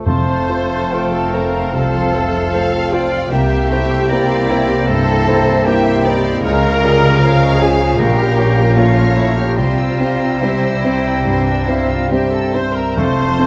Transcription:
0.06 double bass section F1, grand piano F2, timpani F2, cello section F2, bassoon A3, french horn section A3 F4, violin section A4 C5 A5, viola section C5, clarinet F5, oboe A5, flute section C6
0.29 violin section F5 C6
0.49 grand piano F4 C5, violin section C5 A5
0.72 violin section F5 C6
0.92 grand piano A3 F4 C5, violin section C5 A5, oboe F5, clarinet G5
1.13 viola section A4, violin section F5 C6, flute section A5
1.33 grand piano F4 C5, viola section A#4, violin section C5 A5, flute section A#5
1.55 violin section F5 C6
1.73 grand piano C2, bassoon C4, viola section A4, violin section C5 A5, clarinet F5, flute section A5
1.94 violin section F5 C6
2.14 grand piano F4 C5, violin section C5 A5, clarinet E5
2.34 violin section F5 C6
2.52 grand piano A3 F4 C5, bassoon C4, violin section C5 F5 A5, clarinet F5
2.72 violin section F5 C6
2.91 viola section F4, grand piano F4 C5, violin section C5 D5 A5, clarinet F5, flute section F5
3.12 violin section F5 C6
3.30 double bass section C2, grand piano C2, cello section C3, french horn section A#3 E4, bassoon A#3, viola section G4, clarinet E5, violin section E5 G5 A#5, flute section G5, oboe G5
3.50 violin section E5 C6
3.70 bassoon A3, grand piano E4 C5, violin section E5 G5 A#5
3.89 violin section E5 C6
4.08 bassoon A#3, grand piano A#3 E4, violin section D5 G5 A#5, clarinet G5, oboe A#5
4.13 grand piano C5
4.28 violin section E5 C6
4.48 viola section E4, grand piano E4 C5, flute section E5, violin section G5 A#5
4.68 viola section G4, violin section E5 C6, flute section G5
4.87 grand piano G2, bassoon C4, viola section A4, violin section C5 G5 A#5, clarinet E5, flute section A5
5.08 violin section E5 C6
5.26 bassoon C4, grand piano E4 C5, violin section G5 A#5
5.47 violin section E5 C6
5.65 bassoon A#3, grand piano A#3 E4 C5, viola section G4, clarinet E5, violin section E5 G5 A#5, oboe G5, flute section G5
5.86 violin section E5 C6
6.04 grand piano E4 C5, violin section D5 G5 A#5, clarinet D#5
6.24 violin section E5 C6
6.43 double bass section C#2, grand piano C#2, cello section C#3, bassoon G#3, french horn section G#3 F4, viola section A#4, violin section C#5 G#5, oboe F5, flute section A#5
6.63 violin section F5 C#6
6.82 bassoon G3, grand piano F4 G#4, violin section C#5 D#5 G#5
7.03 violin section F5 C#6
7.20 bassoon F3, grand piano G#3 F4 G#4, clarinet C#5, violin section C#5 F5 G#5, oboe F5
7.41 violin section F5 C#6
7.59 grand piano F4 G#4, viola section G#4, violin section C#5 G#5, oboe G#5, flute section G#5
7.79 violin section F5 C#6
7.98 double bass section A#1, grand piano A#1, cello section A#2, bassoon A#3, french horn section C#4, viola section G4, violin section A#4 F5 C#6, clarinet F5, flute section G5, oboe A#5
8.17 violin section A#5 F6
8.36 grand piano F4 C#5, clarinet F5, violin section F5 C#6
8.56 violin section A#5 F6
8.75 bassoon A3, grand piano A#3 F4 C#5, viola section F4, violin section C#5 F5 C#6, flute section F5
8.95 violin section A#5 F6
9.15 viola section E4, grand piano F4 C#5, flute section E5, violin section F5 C#6
9.35 viola section G4, flute section G5, violin section A#5 F6
9.56 double bass section C2, grand piano C2, cello section C3, bassoon G3, french horn section C4 G4, viola section F4, violin section C5 E5 C6, flute section F5, clarinet G5, oboe A#5
9.77 violin section G5 E6
9.99 grand piano C4 C5, violin section E5 C6
10.20 violin section G5 E6
10.41 grand piano G3 C4 C5, viola section E4, violin section E5 C6, flute section E5, clarinet G5
10.63 violin section G5 E6
10.84 grand piano C4 C5, violin section E5 C6
11.05 violin section G5 E6
11.25 grand piano G2, violin section E5 C6
11.47 viola section D4, flute section D5, violin section G5 E6
11.67 grand piano C4 C5, viola section E4, flute section E5, violin section E5 C6, clarinet F5
11.89 viola section F4, flute section F5, violin section G5 E6
12.10 grand piano G3 C4 C5, viola section G4, clarinet E5, violin section E5 C6, flute section G5
12.32 viola section A4, violin section G5 E6, flute section A5
12.53 grand piano C4 C5, viola section C5, violin section E5 C6, flute section C6
12.74 viola section A#4, violin section G5 E6, flute section A#5
12.96 double bass section F1, grand piano F2, timpani F2, cello section F2, bassoon A3, french horn section A3 F4, viola section C5, violin section C5 A5, clarinet F5, oboe A5, flute section C6
13.20 violin section F5 C6
13.39 bassoon A3, grand piano C4 C5, violin section C5 A5

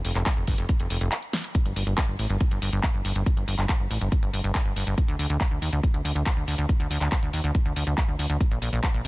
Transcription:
0.05 analog synth bass F1, open hi-hat
0.15 analog synth bass F1, clap, closed hi-hat
0.26 kick, clap, closed hi-hat
0.37 analog synth bass F1
0.47 analog synth bass G1, kick, open hi-hat
0.58 analog synth bass F1, closed hi-hat
0.69 kick, closed hi-hat
0.80 analog synth bass F1, closed hi-hat
0.90 analog synth bass F1, open hi-hat
1.01 analog synth bass F1, closed hi-hat
1.12 clap, closed hi-hat
1.23 closed hi-hat
1.33 snare, open hi-hat
1.44 closed hi-hat
1.55 kick, closed hi-hat
1.66 analog synth bass G1, closed hi-hat
1.76 analog synth bass G1, open hi-hat
1.87 analog synth bass G1, closed hi-hat
1.98 kick, clap, closed hi-hat
2.08 analog synth bass G1
2.19 analog synth bass A1, open hi-hat
2.30 analog synth bass G1, closed hi-hat
2.40 kick, closed hi-hat
2.51 analog synth bass G1, closed hi-hat
2.62 analog synth bass G1, open hi-hat
2.73 analog synth bass G1, closed hi-hat
2.83 kick, clap, closed hi-hat
2.94 analog synth bass G1
3.05 analog synth bass G1, open hi-hat
3.16 analog synth bass G1, closed hi-hat
3.26 kick, closed hi-hat
3.37 analog synth bass G1, closed hi-hat
3.48 analog synth bass G1, open hi-hat
3.58 analog synth bass G1, clap, closed hi-hat
3.69 kick, clap, closed hi-hat
3.80 analog synth bass G1
3.91 analog synth bass A1, open hi-hat
4.01 analog synth bass G1, closed hi-hat
4.12 kick, closed hi-hat
4.23 analog synth bass G1, closed hi-hat
4.33 analog synth bass G1, open hi-hat
4.44 analog synth bass G1, closed hi-hat
4.55 kick, clap, closed hi-hat
4.66 analog synth bass G1
4.76 analog synth bass G1, open hi-hat
4.87 analog synth bass G1, closed hi-hat
4.98 kick, closed hi-hat
5.08 analog synth bass D2, closed hi-hat
5.19 analog synth bass D2, open hi-hat
5.30 analog synth bass D2, closed hi-hat
5.41 kick, clap, closed hi-hat
5.51 analog synth bass D2
5.62 analog synth bass D#2, open hi-hat
5.73 analog synth bass D2, closed hi-hat
5.83 kick, closed hi-hat
5.94 analog synth bass D2, closed hi-hat
6.05 analog synth bass D2, open hi-hat
6.15 analog synth bass D2, closed hi-hat
6.26 kick, clap, closed hi-hat
6.37 analog synth bass D2
6.48 analog synth bass D2, open hi-hat
6.58 analog synth bass D2, closed hi-hat
6.69 kick, closed hi-hat
6.80 analog synth bass D2, closed hi-hat
6.90 analog synth bass D2, open hi-hat
7.01 analog synth bass D2, clap, closed hi-hat
7.12 kick, clap, closed hi-hat
7.23 analog synth bass D2, closed hi-hat
7.33 analog synth bass D#2, open hi-hat
7.44 analog synth bass D2, closed hi-hat
7.55 kick, closed hi-hat
7.65 analog synth bass D2, closed hi-hat
7.76 analog synth bass D2, open hi-hat
7.87 analog synth bass D2, closed hi-hat
7.98 kick, clap, closed hi-hat
8.08 analog synth bass D2
8.19 analog synth bass D2, open hi-hat
8.30 analog synth bass D2, closed hi-hat
8.41 kick, closed hi-hat, shaker
8.51 analog synth bass A#1, closed hi-hat
8.62 analog synth bass A#1, open hi-hat, shaker
8.73 analog synth bass A#1, closed hi-hat, shaker
8.83 kick, clap, closed hi-hat, shaker
8.94 analog synth bass A#1

